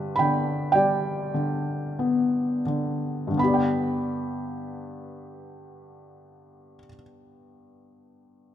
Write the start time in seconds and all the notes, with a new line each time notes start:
Already playing: G2 D3 G3 G4 B4
0.16 D3 G5 B5
0.72 G3 D5 G5
1.34 D3
1.99 B3
2.66 D3
3.27 G2
3.32 D3
3.37 B3 B5
3.43 G4
3.48 D5
3.54 G5